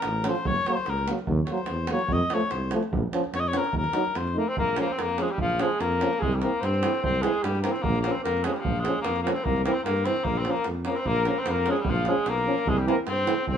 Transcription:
Already playing: A#4
0.02 A1, davul high
0.24 F3 C#4, davul high
0.28 C5
0.35 davul high
0.45 F#1 C#5, davul low
0.56 davul high
0.66 F#3 A#3 C5, davul high
0.77 davul high
0.86 C#2 A#4, davul high
0.98 davul high
1.07 F#3 A#3, davul high
1.19 davul high
1.27 D#2, davul low
1.45 C#5, davul high
1.49 F#3 A#3 C5
1.58 davul high
1.66 E2, davul high
1.87 A#3, davul high
1.92 F#3 C#5
1.99 davul high
2.08 F2, davul low
2.13 D#5
2.30 F3 A3 C#5, davul high
2.41 davul high
2.51 C2 C5, davul high
2.71 F3 A3, davul high
2.83 davul high
2.92 A#1, davul low
3.13 F3 C#4, davul high
3.24 davul high
3.33 F2 C#5, davul high
3.40 D#5
3.48 C#5
3.53 F3 C#4, davul high
3.58 A#4
3.64 davul high
3.73 D#2, davul low
3.77 A#4
3.84 davul high
3.93 F#3 D#4, davul high
4.04 davul high
4.15 F2 C5, davul high
4.27 davul high
4.34 A3 A#3 D#4 A#4
4.49 C4 C5
4.56 A#1 A#3 A#4, davul low
4.66 davul high
4.76 F3 C#4 A#4, davul high
4.81 A#3
4.88 C5
4.93 C4
4.98 F2 A#4, davul high
5.03 A#3
5.09 davul high
5.18 F3 C#4 G#4, davul high
5.22 G#3
5.28 G3 G4, davul high
5.38 A#1 F3 F4, davul low
5.50 davul high
5.58 F3 G#3 C#4 G#4, davul high
5.80 F2 A#3 A#4, davul high
5.92 davul high
6.01 F3 C#4, davul high
6.13 davul high
6.20 C2 G#3 G#4, davul low
6.32 G3 G4, davul high
6.40 E3 A#3 C4 A#4, davul high
6.61 G2 C5, davul high
6.65 C4
6.74 davul high
6.83 E3 C4, davul high
6.94 davul high
7.02 C2 C4 C5, davul low
7.15 davul high
7.22 E3 G#3 C4 G#4, davul high
7.34 davul high
7.43 G2 G3 G4, davul high
7.55 davul high
7.62 A#3 C4 A#4, davul high
7.66 E3
7.72 C4 C5, davul high
7.83 A#1 A#3 A#4, davul low
7.95 davul high
8.01 A#3 A#4, davul high
8.06 F3 C#4
8.12 C4 C5
8.24 F2 A#3 A#4, davul high
8.37 davul high
8.43 F3 G#3 C#4 G#4, davul high
8.53 G3 G4, davul high
8.60 F3
8.65 A#1 F4, davul low
8.76 G#3, davul high
8.85 F3 C#4 G#4, davul high
9.01 F2 A#3 A#4, davul high
9.16 davul high
9.23 F3 A#3 A#4
9.27 C#4, davul high
9.33 C4 C5, davul high
9.44 C2 A#3 A#4, davul low
9.57 davul high
9.64 E3 A#3 C4 A#4, davul high
9.73 C4 C5
9.84 G2 A#3 A#4, davul high
9.97 davul high
10.05 E3 C4 C5, davul high
10.16 davul high
10.24 A#1 A#3 A#4, davul low
10.36 C4, davul high
10.42 C#4 C5, davul high
10.48 F3 A#3
10.54 A#4, davul high
10.64 F2, davul high
10.85 F3 A#3 C#4, davul high
10.89 A#4
10.96 C4 C5, davul high
11.05 A#1 A#3 A#4, davul low
11.16 davul high
11.25 F3 A#3 C#4 A#4, davul high
11.39 C4 C5
11.46 F2 A#3, davul high
11.51 A#4
11.56 davul high
11.66 F3 C#4, davul high
11.70 G#3 G#4
11.76 G3 G#3 G#4, davul high
11.85 A#1, davul low
11.89 F3 F4
11.95 davul high
12.05 F3 G#3 C#4, davul high
12.10 G#4
12.26 B1 A#3, davul high
12.30 A#4
12.38 davul high
12.46 F3 C#4
12.58 davul high
12.66 C2 G#3 G#4, davul low
12.78 G3 G4, davul high
12.86 E3 A#3 C4, davul high
12.91 A#4
13.07 G2 C4, davul high
13.12 C5
13.17 davul high
13.26 E3 C4, davul high
13.38 davul high
13.47 C2 C4, davul low
13.52 C5

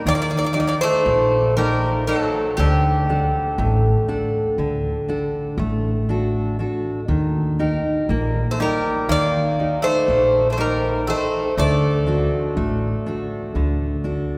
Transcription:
Already playing: D#4 G4 A#4
0.06 D#2 D#3 A#3 D5
0.14 A#3 D5
0.22 A#3 D5
0.30 A#3 D5
0.37 A#3 D5
0.44 A#3 D5
0.53 A#3 D#4 G4 D5
0.60 A#3 D5
0.67 A#3 D5
0.81 A3 C5
1.06 A#1 A#2
1.57 G3 A#3 D#4 A#4 G5
2.07 F#3 D#4 A#4
2.18 A4
2.57 D2 D3 G4
3.09 D4 A4 F#5
3.58 A1 A3
4.08 D4 A4 F#5
4.58 D2 D3
5.09 D4 A4 F#5
5.58 A1 A3
6.09 D4 F#4 A4
6.59 D4 F#4 A4
7.08 D#2 D#3
7.59 D#4 G4 A#4
8.09 A#1 A#3
8.51 A3 C5
8.59 G3 D#4 G4 A#4
9.09 D#2 D#3 A#3 D5
9.59 D#4 G4
9.82 A3 C5
10.08 A#1 A#2
10.50 A3 C5
10.58 G3 D#4 G4 A#4
11.07 A3 D#4 G4 C5
11.57 D2 D3 A3 D5
12.07 D4 F#4 A4
12.57 A1 A3
13.06 D4 F#4 A4
13.55 D2 D3
14.04 D4 F#4 A4

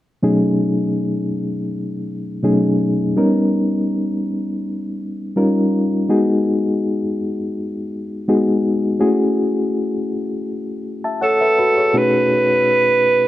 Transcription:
0.23 B2 F#3 A3 C#4 D#4 G#4
2.43 B2 F#3 A3 C#4 D#4 G#4
3.16 G3 B3 C#4 D#4 A#4
5.36 G3 C#4 D#4 F4 A#4
6.09 G#3 B3 D#4 F#4 G#4
8.28 G#3 B3 D#4 F#4 G#4
8.99 A3 C#4 E4 F#4 G#4
11.04 E5 A5
11.21 A4 C#5 F#5
11.41 B4 E5
11.59 F#4 B4
11.77 G#4 C#5
11.93 B2 A3 C#4 D#4 F#4 G#4 B4

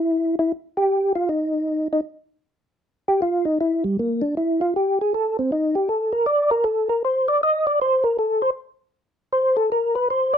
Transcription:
Already playing: E4
0.39 E4
0.77 G4
1.15 F4
1.29 D#4
1.93 D#4
3.08 G4
3.22 F4
3.45 D#4
3.61 E4
3.84 G3
3.99 A#3
4.22 D4
4.37 E4
4.61 F4
4.76 G4
5.01 G#4
5.14 A4
5.39 C4
5.52 D#4
5.75 G4
5.89 A4
6.13 A#4
6.26 D5
6.51 A#4
6.64 A4
6.89 A#4
7.05 C5
7.28 D5
7.43 D#5
7.67 D5
7.81 C5
8.04 A#4
8.19 A4
8.42 C5
9.33 C5
9.57 A4
9.72 A#4
9.95 B4
10.10 C5
10.34 D5

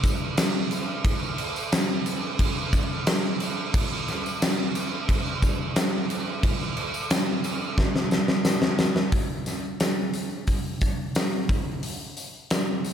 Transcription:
0.04 kick, tambourine, crash
0.37 snare, tambourine, crash
0.71 tambourine, crash
1.04 kick, tambourine, crash
1.23 tambourine
1.38 tambourine, crash
1.56 tambourine
1.72 snare, tambourine, crash
2.06 tambourine, crash
2.39 kick, crash
2.57 tambourine
2.73 kick, tambourine, crash
3.07 snare, tambourine, crash
3.40 tambourine, crash
3.74 kick, tambourine, crash
3.93 tambourine
4.08 snare, tambourine, crash
4.26 tambourine
4.42 snare, tambourine, crash
4.75 tambourine, crash
5.09 kick, crash
5.26 tambourine
5.42 kick, tambourine, crash
5.76 snare, tambourine, crash
6.10 tambourine, crash
6.43 kick, crash
6.60 tambourine
6.77 crash
6.94 tambourine
7.10 snare, tambourine, crash
7.44 tambourine, crash
7.61 tambourine
7.78 kick, snare, tambourine
7.96 snare
8.11 snare, tambourine
8.28 snare, tambourine
8.45 snare, tambourine
8.62 snare
8.78 snare, tambourine
8.96 snare, tambourine
9.12 kick, open hi-hat
9.46 snare, open hi-hat, tambourine
9.63 tambourine
9.80 snare, open hi-hat, tambourine
10.14 open hi-hat, tambourine
10.30 tambourine
10.47 kick, open hi-hat, tambourine
10.81 kick, open hi-hat, tambourine
11.15 snare, open hi-hat, tambourine
11.49 kick, open hi-hat
11.83 open hi-hat
12.17 open hi-hat, tambourine
12.35 tambourine
12.51 snare, open hi-hat, tambourine
12.85 open hi-hat, tambourine

